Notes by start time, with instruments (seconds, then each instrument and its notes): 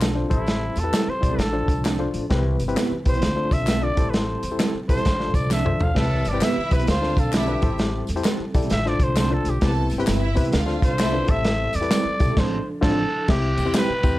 Already playing: upright bass B1, reed electric piano D3, tonewheel organ D3 C4 F4
0.01 clean electric guitar F3 C4 D4 A4, snare, clap, closed hi-hat, tambourine
0.15 reed electric piano D4 F4 A4 C5
0.29 upright bass A1, reed electric piano A2 E4 G4 A4 C5, tonewheel organ G3 C4 A4, trumpet E4, kick, closed hi-hat, tambourine
0.46 snare, closed hi-hat, tambourine
0.76 upright bass E2, trumpet A4, closed hi-hat, tambourine
0.83 reed electric piano E4 G4 A4 B4
0.93 clean electric guitar G3 C4 E4 A4, snare, clap, closed hi-hat, tambourine
1.08 trumpet C5, muted upright bass stroke
1.21 upright bass B1, reed electric piano E4 G4 A4 D5, kick, closed hi-hat, tambourine
1.30 clean electric guitar G3 C4 E4 A4
1.38 upright bass A1, reed electric piano A2, tonewheel organ F3 D4, trumpet A4, snare, closed hi-hat, tambourine
1.52 reed electric piano D4 F4 A4 C5
1.68 upright bass C2, kick, closed hi-hat, tambourine
1.84 clean electric guitar F3 C4 D4 A4, snare, clap, closed hi-hat, tambourine
1.99 reed electric piano D4 F4 A4 C5
2.14 upright bass A1, closed hi-hat
2.30 upright bass C2, reed electric piano C3 C4 E4 G4 B4, tonewheel organ E3 C4 B4, kick, snare, closed hi-hat
2.59 upright bass G1, closed hi-hat, tambourine
2.68 reed electric piano C4 E4 G4 B4, closed hi-hat
2.76 clean electric guitar B3 E4 G4 B4, snare, clap, closed hi-hat, tambourine
2.91 muted upright bass stroke
3.05 upright bass B1, reed electric piano C4 E4 G4 B4, trumpet C5, kick, closed hi-hat, tambourine
3.14 clean electric guitar B3 E4 G4 B4, closed hi-hat
3.22 upright bass D2, tonewheel organ D3 F4, reed electric piano D3, snare, closed hi-hat, tambourine
3.36 reed electric piano D4 F4 A4 C5
3.51 upright bass B1, trumpet E5, kick, closed hi-hat, tambourine
3.67 clean electric guitar A3 C4 F4 A4, snare, clap, closed hi-hat, tambourine
3.82 reed electric piano D4 F4 A4 D5, trumpet D5
3.96 upright bass A1, reed electric piano A2 E4 G4 A4 C5, tonewheel organ G3 C4 A4, kick, closed hi-hat, tambourine
4.10 trumpet B4, closed hi-hat, tambourine
4.14 trumpet C5, snare
4.43 upright bass E2, closed hi-hat, tambourine
4.52 reed electric piano E4 G4 A4 C5
4.58 clean electric guitar G3 C4 E4 A4, snare, clap, closed hi-hat, tambourine
4.74 muted upright bass stroke
4.89 upright bass B1, reed electric piano E4 G4 A4 C5, trumpet C5, kick, closed hi-hat, tambourine
4.96 clean electric guitar G3 C4 E4 A4, closed hi-hat
5.05 upright bass A1, reed electric piano A2, tonewheel organ F3 D4, kick, snare, closed hi-hat, tambourine
5.20 reed electric piano D4 F4 A4 C5, snare
5.34 upright bass C2, trumpet D5, kick, closed hi-hat, tambourine
5.50 clean electric guitar F3 C4 D4 A4, trumpet E5, snare, clap, tambourine
5.65 reed electric piano D4 F4 A4 C5, mid tom
5.79 upright bass B1, trumpet F5, floor tom, tambourine
5.94 upright bass C2, reed electric piano C3 C4 E4 G4 B4, tonewheel organ E3 C4 B4, violin section A4 A5, trumpet E5, kick, snare, crash
6.25 upright bass G1, closed hi-hat, tambourine
6.29 reed electric piano C4, trumpet D5
6.33 reed electric piano E4 G4 B4, violin section G4 G5
6.41 clean electric guitar B3 E4 G4 B4, violin section E4 E5, trumpet E5, snare, clap, closed hi-hat, tambourine
6.57 muted upright bass stroke
6.70 upright bass B1, reed electric piano C4 E4 G4 B4, trumpet B4, kick, closed hi-hat, tambourine
6.79 clean electric guitar B3 E4 G4 B4, closed hi-hat
6.87 upright bass D2, reed electric piano D3, tonewheel organ D3 C4 F4, violin section F4 F5, trumpet C5, snare, closed hi-hat, tambourine
7.02 reed electric piano D4 F4 A4 C5, snare
7.17 upright bass B1, trumpet A4, kick, closed hi-hat, tambourine
7.32 clean electric guitar F3 C4 D4 A4, violin section E4 E5, trumpet G4, snare, clap, closed hi-hat, tambourine
7.47 reed electric piano D4 F4 A4 B4
7.62 upright bass A1, reed electric piano A2 E4 G4 A4 C5, tonewheel organ G3 A4, kick, closed hi-hat, tambourine
7.78 snare, closed hi-hat, tambourine
8.07 upright bass E2, closed hi-hat, tambourine
8.16 reed electric piano E4 G4 A4 C5, closed hi-hat
8.24 clean electric guitar G3 C4 E4 A4, snare, clap, closed hi-hat, tambourine
8.39 muted upright bass stroke
8.54 upright bass B1, reed electric piano E4 G4 A4 D5, kick, closed hi-hat, tambourine
8.62 clean electric guitar G3 C4 E4 A4, closed hi-hat
8.70 upright bass A1, reed electric piano A2, tonewheel organ D3 A3 F4, trumpet E5, snare, closed hi-hat, tambourine
8.85 reed electric piano D4 F4 A4 C5, trumpet D5, snare
8.99 upright bass C2, kick, closed hi-hat, tambourine
9.03 trumpet C5
9.16 clean electric guitar F3 C4 D4 A4, trumpet C5, snare, clap, closed hi-hat, tambourine
9.30 reed electric piano D4 F4 A4 C5, trumpet A4
9.45 upright bass B1, closed hi-hat, tambourine
9.49 trumpet G4
9.61 upright bass C2, reed electric piano C3 C4 E4 G4 B4, tonewheel organ C3 B3 E4, violin section A4 A5, kick, snare, closed hi-hat, tambourine
9.90 upright bass G1, closed hi-hat, tambourine
9.98 reed electric piano C4 E4 G4 B4, violin section G4 G5, closed hi-hat
10.06 upright bass G1, clean electric guitar G3 C4 E4 B4, violin section E4 E5, snare, clap, closed hi-hat, tambourine
10.35 upright bass C3, reed electric piano C4 E4 G4 B4, kick, closed hi-hat, tambourine
10.44 clean electric guitar G3 C4 E4 B4, closed hi-hat
10.52 upright bass D2, reed electric piano D3, tonewheel organ D3 C4 F4, violin section F4 F5, snare, closed hi-hat, tambourine
10.66 reed electric piano D4 F4 A4 C5, snare
10.82 upright bass C2, trumpet C5, kick, closed hi-hat, tambourine
10.98 clean electric guitar A3 C4 F4 A4, violin section E4 E5, snare, clap, closed hi-hat, tambourine
11.12 reed electric piano D4 F4 A4 B4
11.28 upright bass A1, reed electric piano A2 E4 G4 A4 C5, tonewheel organ G3 C4 A4, trumpet E5, kick, closed hi-hat, tambourine
11.44 snare, closed hi-hat
11.73 upright bass E2, trumpet D5, closed hi-hat, tambourine
11.81 reed electric piano E4 G4 A4 B4, closed hi-hat
11.91 clean electric guitar G3 C4 E4 A4, snare, clap, closed hi-hat, tambourine
12.05 muted upright bass stroke
12.20 upright bass B1, reed electric piano E4 G4 A4 D5, kick, closed hi-hat, tambourine
12.29 clean electric guitar G3 C4 E4 A4
12.36 upright bass A1, clean electric guitar F3 C4 D4 A4, tonewheel organ F3 D4, trumpet C5, kick, snare, crash
12.81 upright bass A1, clean electric guitar F3 C4 D4 A4, reed electric piano D4 F4 A4 C5, trumpet A4, kick, snare, crash
13.28 upright bass C2, reed electric piano C3 C4 E4 G4 C5 E5, trumpet G4, kick, snare, crash
13.42 ride
13.57 upright bass E2, violin section G4 G5, ride, tambourine
13.66 reed electric piano C4 E4 G4 C5 G5
13.74 clean electric guitar G3 C4 E4 G4, trumpet B4, snare, clap, ride, tambourine
13.89 muted upright bass stroke
14.03 upright bass E2, reed electric piano C4 E4 G4 C5 G5, kick, ride, tambourine